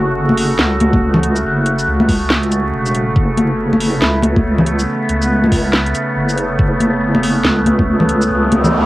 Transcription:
Already playing: wobble bass F#1, synth drone C#3 A3 F#4
0.29 high conga
0.37 open hi-hat
0.59 wobble bass C#2, snare
0.80 closed hi-hat, high conga
0.93 kick, high conga
1.14 low conga
1.23 closed hi-hat
1.36 shaker
1.45 wobble bass F#1
1.66 closed hi-hat
1.79 shaker
1.87 wobble bass C#2
2.00 high conga
2.09 kick, open hi-hat
2.30 snare
2.43 closed hi-hat
2.52 closed hi-hat, shaker
2.73 wobble bass E1
2.86 shaker
2.95 closed hi-hat
3.16 wobble bass F#1, synth drone B3, kick
3.37 closed hi-hat, high conga
3.73 high conga
3.80 open hi-hat
3.93 duduk E4
4.02 wobble bass C#2, snare
4.22 closed hi-hat, high conga
4.36 kick, high conga
4.58 low conga
4.66 closed hi-hat
4.79 shaker
5.09 wobble bass C#2, closed hi-hat
5.22 duduk B3, shaker
5.44 high conga
5.52 kick, open hi-hat
5.73 snare
5.86 closed hi-hat
5.95 closed hi-hat, shaker
6.16 wobble bass F#1
6.29 shaker
6.37 closed hi-hat
6.59 wobble bass F#1, kick
6.80 closed hi-hat, high conga
7.15 high conga
7.23 open hi-hat
7.45 wobble bass C#2, snare
7.66 closed hi-hat, high conga
7.79 kick, high conga
8.00 low conga
8.09 closed hi-hat
8.22 shaker
8.30 wobble bass C#2, noise sweep
8.52 closed hi-hat, high conga
8.64 low conga, shaker

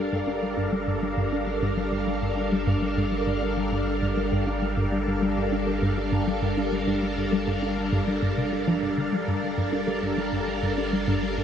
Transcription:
Already playing: sub bass G1, string machine G3 D4 A4 A#4 F5, synth texture D5
0.13 synth arpeggio sound G2
0.28 synth arpeggio sound D4
0.43 synth arpeggio sound G3
0.57 synth arpeggio sound G2
0.72 synth arpeggio sound G3
0.88 synth arpeggio sound G2
1.03 synth arpeggio sound G3
1.17 synth arpeggio sound G2
1.32 synth arpeggio sound D4
1.47 synth arpeggio sound G3
1.62 synth arpeggio sound G2
1.77 synth arpeggio sound G3
1.92 synth arpeggio sound G2
2.07 synth arpeggio sound G3
2.22 synth arpeggio sound G2
2.37 synth arpeggio sound D4
2.52 synth arpeggio sound G3
2.67 synth arpeggio sound G2
2.82 synth arpeggio sound G3
2.97 synth arpeggio sound G2
3.12 synth arpeggio sound G3
3.27 synth arpeggio sound G2
3.42 synth arpeggio sound D4
3.57 synth arpeggio sound G3
3.72 synth arpeggio sound G2
3.87 synth arpeggio sound G3
4.02 synth arpeggio sound G2
4.17 synth arpeggio sound G3
4.32 synth arpeggio sound G2
4.47 synth arpeggio sound D4
4.62 synth arpeggio sound G3
4.77 synth arpeggio sound G2
4.92 synth arpeggio sound G3
5.07 synth arpeggio sound G2
5.22 synth arpeggio sound G3
5.37 synth arpeggio sound G2
5.52 synth arpeggio sound D4
5.67 synth arpeggio sound G3
5.82 synth arpeggio sound G2
5.97 synth arpeggio sound G3
6.12 synth arpeggio sound G2
6.27 synth arpeggio sound G3
6.42 synth arpeggio sound G2
6.57 synth arpeggio sound D4
6.72 synth arpeggio sound G3
6.87 synth arpeggio sound G2
7.03 synth arpeggio sound G3
7.18 synth arpeggio sound G2
7.33 synth arpeggio sound G3
7.47 synth arpeggio sound G2
7.62 synth arpeggio sound D4
7.77 synth arpeggio sound G3
7.92 synth arpeggio sound G2
8.07 synth arpeggio sound G3
8.23 synth arpeggio sound G2
8.38 synth arpeggio sound C3
8.53 synth arpeggio sound G3
8.68 synth arpeggio sound F3
8.82 synth arpeggio sound G2
8.98 synth arpeggio sound D3
9.12 sub bass G1, synth arpeggio sound G3
9.28 synth arpeggio sound G2
9.43 synth arpeggio sound G3
9.58 synth arpeggio sound G2
9.73 synth arpeggio sound D4
9.88 synth arpeggio sound G3
10.03 synth arpeggio sound G2
10.18 synth arpeggio sound G3
10.33 synth arpeggio sound G2
10.48 synth arpeggio sound G3
10.63 synth arpeggio sound G2
10.78 synth arpeggio sound D4
10.93 synth arpeggio sound G3
11.08 synth arpeggio sound G2
11.23 synth arpeggio sound G3
11.38 synth arpeggio sound G2

